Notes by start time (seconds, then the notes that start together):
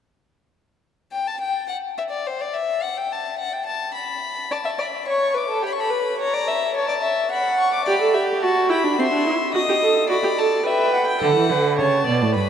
1.12 G5
1.27 A5
1.41 G5
1.68 F#5
1.98 E5
2.10 D5
2.27 C5
2.41 D5
2.54 E5
2.82 F#5
2.97 G5
3.12 A5
3.39 F#5
3.53 G5
3.66 A5
3.95 B5
4.51 D5 A5
4.65 E5
4.79 D5 B5
5.07 C#5 C#6
5.34 B4 D6
5.49 A4
5.63 G4 B5
5.72 C#6
5.77 A4 B5
5.90 B4
6.19 C#5 A#5
6.34 D5
6.48 E5
6.75 C#5 A5
6.89 D5
7.02 E5
7.32 F#5 B5
7.60 C#6
7.74 D6
7.85 G4 D5 B5
8.01 A4
8.14 G4 E5
8.42 F#4 F#5 A5
8.70 E4 G5 B5
8.84 D4
8.98 C4 E5 C6
9.12 D4
9.26 E4
9.54 F#4 D#5 D#6
9.69 G4
9.82 A4
10.09 F#4 D5 B5
10.23 G4
10.38 A4 A5
10.66 B4 E5 G5
10.94 F#5
11.07 G5
11.21 D3 A4 F#5
11.35 E3
11.50 D3 B4
11.78 C#3 C#5 A5
12.06 B2 D5
12.22 A2
12.35 G2 B4 B5